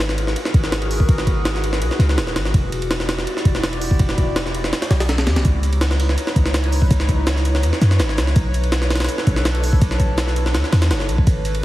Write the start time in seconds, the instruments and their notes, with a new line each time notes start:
Already playing: 808-style bass G#1, analog synth pad F#4 G#4 A#4 B4
0.09 snare
0.18 ride
0.27 snare
0.36 ride
0.45 snare
0.54 808-style bass G#1, kick, ride
0.64 snare
0.72 snare, ride
0.82 ride
0.91 open hi-hat
1.00 kick
1.09 808-style bass G#1, kick, ride
1.18 snare
1.27 kick, ride
1.45 snare, ride
1.55 snare
1.64 ride
1.73 snare
1.81 808-style bass B1, ride
1.91 snare
1.99 808-style bass C#2, snare, ride
2.09 snare
2.18 808-style bass D#1, snare, ride
2.27 snare
2.36 808-style bass G#1, snare, ride
2.45 snare
2.54 808-style bass E1, analog synth pad E4 G4 D5, kick, ride
2.72 ride
2.82 ride
2.91 snare, ride
3.00 snare
3.09 snare, ride
3.18 snare
3.27 ride
3.37 snare
3.45 808-style bass E1, kick, ride
3.55 snare
3.63 snare, ride
3.73 ride
3.81 open hi-hat
3.91 kick
3.99 808-style bass E1, kick, ride
4.09 snare
4.18 kick, ride
4.36 snare, ride
4.46 snare
4.55 ride
4.64 snare
4.73 snare, ride
4.82 snare, ride
4.90 808-style bass B1, snare, ride
5.00 snare, ride
5.09 snare, ride
5.18 snare, ride
5.27 808-style bass E2, snare, ride
5.36 808-style bass B1, snare, ride
5.45 808-style bass C#2, analog synth pad D#4 E4 B4 C#5, kick, ride, shaker
5.63 ride, shaker
5.73 ride
5.81 snare, ride, shaker
5.91 snare
6.00 open hi-hat, ride
6.09 snare
6.18 ride, shaker
6.27 snare
6.36 808-style bass C#2, kick, ride, shaker
6.46 snare
6.54 snare, ride, shaker
6.64 ride
6.72 open hi-hat, shaker
6.82 kick
6.91 808-style bass C#2, kick, ride, shaker
7.00 snare
7.09 kick, ride, shaker
7.27 snare, ride, shaker
7.36 snare
7.45 ride, shaker
7.55 snare
7.63 808-style bass E2, ride, shaker
7.73 snare, closed hi-hat
7.81 808-style bass F#2, snare, ride, shaker
7.91 snare, closed hi-hat
7.99 808-style bass G#1, snare, ride, shaker
8.09 snare
8.17 808-style bass C#2, snare, ride, shaker
8.27 snare
8.36 808-style bass B1, analog synth pad D4 A4, kick, ride, shaker
8.54 ride, shaker
8.64 ride
8.72 snare, ride, shaker
8.82 snare
8.90 snare, open hi-hat, ride
8.95 snare, ride
9.00 snare, ride
9.04 snare, ride
9.09 ride, shaker
9.18 snare
9.27 808-style bass B1, kick, ride, shaker
9.36 snare
9.45 snare, ride, shaker
9.55 ride
9.64 open hi-hat, shaker
9.73 kick
9.82 808-style bass B1, kick, ride, shaker
9.91 snare
10.00 kick, ride, shaker
10.18 snare, ride, shaker
10.27 snare
10.36 ride, shaker
10.46 snare
10.54 808-style bass D2, snare, ride, shaker
10.64 snare
10.72 808-style bass E2, snare, open hi-hat, ride
10.82 snare, ride
10.90 808-style bass F#1, snare, ride, shaker
11.00 snare
11.09 808-style bass B1, ride, shaker
11.18 kick
11.27 808-style bass G#1, analog synth pad F#4 G#4 A#4, kick, ride, shaker
11.45 ride, shaker
11.55 ride